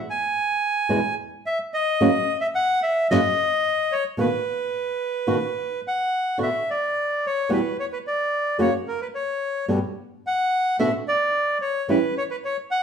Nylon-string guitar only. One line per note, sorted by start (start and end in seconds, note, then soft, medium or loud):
0.89 0.98 E2 medium
0.89 0.99 B2 medium
0.89 0.99 E3 medium
0.89 0.99 G#3 medium
0.89 0.99 B3 medium
0.89 0.99 E4 medium
2.01 2.09 F#2 medium
2.01 2.09 C#3 medium
2.01 2.09 F#3 medium
2.01 2.09 A#3 medium
2.01 2.09 C#4 medium
2.01 2.10 F#4 medium
3.11 3.19 F#2 medium
3.11 3.19 C#3 medium
3.11 3.19 F#3 medium
3.11 3.19 A#3 medium
3.11 3.19 C#4 medium
3.11 3.19 F#4 medium
4.17 4.27 B2 medium
4.17 4.27 D#3 medium
4.17 4.27 A#3 medium
4.17 4.27 B3 medium
4.17 4.27 F#4 medium
5.27 5.37 B2 medium
5.27 5.37 D#3 medium
5.27 5.37 A#3 medium
5.27 5.37 B3 medium
5.27 5.37 F#4 medium
6.38 6.48 B2 medium
6.38 6.48 D3 medium
6.38 6.48 B3 medium
6.38 6.48 D4 medium
6.38 6.48 F#4 medium
7.49 7.59 E2 medium
7.49 7.59 B2 medium
7.49 7.59 E3 medium
7.49 7.59 G3 medium
7.49 7.59 B3 medium
7.49 7.59 F#4 medium
8.59 8.68 F#2 medium
8.59 8.68 C#3 medium
8.59 8.68 F#3 medium
8.59 8.68 A#3 medium
8.59 8.69 C#4 medium
8.59 8.69 F#4 medium
9.68 9.78 G2 medium
9.68 9.78 B2 medium
9.68 9.78 D3 medium
9.68 9.78 G3 medium
9.68 9.78 B3 medium
9.68 9.78 G4 medium
10.79 10.88 B2 medium
10.79 10.88 D3 medium
10.79 10.88 B3 medium
10.79 10.88 D4 medium
10.79 10.89 F#4 medium
11.88 11.97 C#3 medium
11.88 11.97 E3 medium
11.88 11.98 G3 medium
11.88 11.98 C#4 medium
11.88 11.98 E4 medium